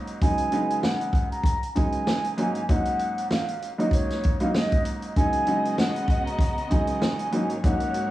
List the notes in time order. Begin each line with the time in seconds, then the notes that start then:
Already playing: G#2 F#3 A#3 C#4 D#4
0.07 closed hi-hat
0.22 C#3 F#3 G#3 B3 D#4 G#5, kick, closed hi-hat
0.38 closed hi-hat
0.52 C#3 F#3 G#3 B3 D#4, closed hi-hat
0.70 closed hi-hat
0.83 F#5, snare
1.01 closed hi-hat
1.13 kick, closed hi-hat
1.31 A#5, closed hi-hat
1.44 kick, closed hi-hat
1.63 closed hi-hat
1.75 C#3 F#3 G#3 B3 D#4 G#5, kick, closed hi-hat
1.92 closed hi-hat
2.07 snare
2.24 closed hi-hat
2.38 G#2 F#3 A#3 C#4 D#4, closed hi-hat
2.55 closed hi-hat
2.69 G#2 F#3 A#3 C#4 D#4 F#5, kick, closed hi-hat
2.85 closed hi-hat
2.99 closed hi-hat
3.18 closed hi-hat
3.31 F5, snare
3.48 closed hi-hat
3.62 closed hi-hat
3.78 G#2 F#3 A#3 C#4 D#4 D#5, closed hi-hat
3.91 C#5, kick, closed hi-hat
4.10 snare, closed hi-hat
4.23 kick, closed hi-hat
4.40 G#2 F#3 A#3 C#4 D#4 F5, closed hi-hat
4.54 D#5, snare
4.72 kick, closed hi-hat
4.85 closed hi-hat
5.02 closed hi-hat
5.15 C#3 F#3 G#3 B3 D#4 F#4 D#5 G#5, kick, closed hi-hat
5.33 closed hi-hat
5.47 C#3 F#3 G#3 B3 D#4, closed hi-hat
5.65 closed hi-hat
5.78 F#5, snare
5.96 closed hi-hat
6.08 kick, closed hi-hat
6.26 A#5, closed hi-hat
6.38 kick, closed hi-hat
6.58 closed hi-hat
6.70 C#3 F#3 G#3 B3 D#4 G#5, kick, closed hi-hat
6.87 closed hi-hat
7.02 snare
7.19 closed hi-hat
7.32 G#2 F#3 A#3 C#4 D#4 A#4 C#5, closed hi-hat
7.50 closed hi-hat
7.64 G#2 F#3 A#3 C#4 D#4 F#5, kick, closed hi-hat
7.80 closed hi-hat
7.94 closed hi-hat